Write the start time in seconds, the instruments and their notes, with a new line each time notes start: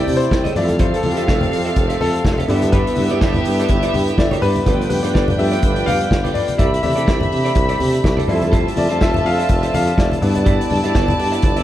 Already playing: french horn section C3 A3 D4 E4, grand piano D3 E3 A3 A4 C5 E5 G5, string section E4 D5 G5
0.00 grand piano D5
0.07 tuba C3, muted clean electric guitar stroke, open hi-hat, high conga
0.17 grand piano C5
0.21 muted clean electric guitar stroke, closed hi-hat
0.31 tuba C2, muted clean electric guitar stroke, kick, snare, muted conga
0.44 clean electric guitar A4 D5 E5, closed hi-hat, high conga
0.55 tuba F2, french horn section C3 C4 F5, grand piano E3 G3 A3 D5, string section C4 A4 F5, clean electric guitar F4 A4 E5, open hi-hat, low conga
0.68 muted clean electric guitar stroke, closed hi-hat, high conga
0.79 clean electric guitar F4 A4 E5, grand piano C5, kick, closed hi-hat, low conga
0.93 grand piano A4, muted clean electric guitar stroke, closed hi-hat
1.03 tuba F2, muted clean electric guitar stroke, open hi-hat, muted conga, high conga
1.12 grand piano G4
1.17 tuba F2, clean electric guitar F4 A4 E5, closed hi-hat
1.27 tuba F1, clean electric guitar F4 A4 E5, kick, snare
1.41 muted clean electric guitar stroke, closed hi-hat, high conga, low conga
1.52 tuba F2, muted clean electric guitar stroke, open hi-hat, muted conga
1.65 clean electric guitar F4 A4 E5, closed hi-hat
1.76 tuba F1, muted clean electric guitar stroke, kick, closed hi-hat, muted conga
1.89 clean electric guitar F4 A4 E5, closed hi-hat
2.00 tuba F2, clean electric guitar F4 A4 E5, grand piano A4, open hi-hat, high conga
2.14 muted clean electric guitar stroke, closed hi-hat
2.25 tuba F1, muted clean electric guitar stroke, kick, snare, muted conga
2.38 clean electric guitar F4 A4 E5, closed hi-hat, high conga
2.48 tuba G2, grand piano D3 G3 B3, french horn section D3 G3 B3 E4, string section B3 G4 E5, clean electric guitar G4 B4 D5, open hi-hat, muted conga, low conga
2.62 muted clean electric guitar stroke, closed hi-hat, high conga
2.72 clean electric guitar G4 B4 D5, grand piano B4, kick, closed hi-hat, muted conga, low conga
2.87 muted clean electric guitar stroke, closed hi-hat
2.95 tuba G2, muted clean electric guitar stroke, open hi-hat, muted conga, high conga
3.10 tuba G2, clean electric guitar G4 B4 D5, closed hi-hat
3.21 tuba G1, clean electric guitar G4 B4 D5, kick, snare
3.34 muted clean electric guitar stroke, closed hi-hat, high conga, low conga
3.45 tuba G2, muted clean electric guitar stroke, open hi-hat, muted conga
3.60 clean electric guitar G4 B4 D5, closed hi-hat
3.68 tuba G1, muted clean electric guitar stroke, kick, closed hi-hat
3.83 clean electric guitar G4 B4 D5, closed hi-hat
3.94 tuba G2, muted clean electric guitar stroke, open hi-hat, muted conga, high conga
4.07 muted clean electric guitar stroke, closed hi-hat
4.18 tuba G1, grand piano D5, muted clean electric guitar stroke, kick, snare, muted conga
4.31 clean electric guitar G4 B4 D5, closed hi-hat, high conga
4.42 tuba G2, clean electric guitar G4 B4 D5, grand piano B4, open hi-hat, muted conga, low conga
4.55 muted clean electric guitar stroke, closed hi-hat, high conga
4.66 tuba G1, french horn section D3 F4, grand piano F3 A3 B3, string section D4 B4 G5, clean electric guitar F4 B4 D5, kick, closed hi-hat, muted conga, low conga
4.80 muted clean electric guitar stroke, closed hi-hat
4.90 tuba G2, grand piano B4, muted clean electric guitar stroke, open hi-hat, muted conga, high conga
5.03 tuba G2, clean electric guitar F4 B4 D5, closed hi-hat
5.14 tuba G1, clean electric guitar F4 B4 D5, grand piano D5, kick, snare
5.28 muted clean electric guitar stroke, closed hi-hat, high conga, low conga
5.38 tuba G2, grand piano F3 A3 B3 E5, muted clean electric guitar stroke, open hi-hat, muted conga
5.52 clean electric guitar F4 B4 D5, closed hi-hat
5.62 tuba G1, muted clean electric guitar stroke, kick, closed hi-hat, muted conga
5.76 muted clean electric guitar stroke, closed hi-hat
5.86 tuba G2, clean electric guitar F4 B4 D5, grand piano F5, open hi-hat, muted conga, high conga
6.00 muted clean electric guitar stroke, closed hi-hat
6.11 tuba G1, muted clean electric guitar stroke, kick, snare
6.24 clean electric guitar F4 B4 D5, closed hi-hat, high conga
6.34 clean electric guitar F4 B4 D5, grand piano D5, open hi-hat, muted conga, low conga
6.47 muted clean electric guitar stroke, closed hi-hat, high conga
6.58 tuba C2, french horn section A3 C4 D4, clean electric guitar E4 A4 D5, string section G4 E5 B5, grand piano E5, kick, closed hi-hat, muted conga, low conga
6.72 muted clean electric guitar stroke, closed hi-hat
6.82 tuba C3, grand piano E3 A3 D4 E5, muted clean electric guitar stroke, open hi-hat, muted conga, high conga
6.96 tuba C3, clean electric guitar E4 A4 D5, closed hi-hat
7.06 tuba C2, clean electric guitar E4 A4 D5, kick, snare
7.20 muted clean electric guitar stroke, closed hi-hat, high conga, low conga
7.31 tuba C3, muted clean electric guitar stroke, open hi-hat
7.45 clean electric guitar E4 A4 D5, closed hi-hat
7.55 tuba C2, muted clean electric guitar stroke, kick, closed hi-hat
7.69 clean electric guitar E4 A4 D5, closed hi-hat
7.79 tuba C3, muted clean electric guitar stroke, open hi-hat, muted conga, high conga
7.93 muted clean electric guitar stroke, closed hi-hat
8.04 tuba C2, muted clean electric guitar stroke, kick, snare, muted conga
8.17 clean electric guitar E4 A4 D5, closed hi-hat, high conga
8.27 tuba F2, french horn section C3 F3, grand piano G3 A3 E4, string section F4 E5 A5, clean electric guitar A4 C5 E5, open hi-hat, low conga
8.41 muted clean electric guitar stroke, closed hi-hat, high conga
8.52 clean electric guitar A4 C5 E5, kick, closed hi-hat, muted conga, low conga
8.66 muted clean electric guitar stroke, closed hi-hat
8.76 tuba F2, grand piano D5, muted clean electric guitar stroke, open hi-hat, muted conga, high conga
8.89 tuba F2, clean electric guitar A4 C5 E5, closed hi-hat
9.01 tuba F1, clean electric guitar A4 C5 E5, grand piano E5, kick, snare, muted conga
9.14 muted clean electric guitar stroke, closed hi-hat, high conga, low conga
9.25 tuba F2, grand piano F5, muted clean electric guitar stroke, open hi-hat
9.38 clean electric guitar A4 C5 E5, closed hi-hat
9.49 tuba F1, muted clean electric guitar stroke, kick, closed hi-hat, muted conga
9.62 clean electric guitar A4 C5 E5, closed hi-hat
9.73 tuba F2, grand piano F5, muted clean electric guitar stroke, open hi-hat, muted conga, high conga
9.86 muted clean electric guitar stroke, closed hi-hat
9.97 tuba F1, grand piano D5, muted clean electric guitar stroke, kick, snare, muted conga
10.11 muted clean electric guitar stroke, closed hi-hat, high conga
10.21 tuba G2, french horn section B2 D3 G3, grand piano G3 B3 D4, string section E4 D5 A5, open hi-hat, low conga
10.35 muted clean electric guitar stroke, closed hi-hat, high conga
10.45 clean electric guitar G4 D5 E5, kick, closed hi-hat, muted conga, low conga
10.60 muted clean electric guitar stroke, closed hi-hat
10.69 tuba G2, muted clean electric guitar stroke, open hi-hat, muted conga, high conga
10.83 tuba G2, clean electric guitar G4 D5 E5, closed hi-hat
10.94 tuba G1, grand piano G3 B3 D4, clean electric guitar G4 D5 E5, kick, snare
11.08 muted clean electric guitar stroke, closed hi-hat, high conga, low conga
11.19 tuba G2, muted clean electric guitar stroke, open hi-hat, muted conga
11.32 clean electric guitar G4 D5 E5, closed hi-hat
11.42 tuba G1, kick, closed hi-hat
11.56 clean electric guitar G4 D5 E5, closed hi-hat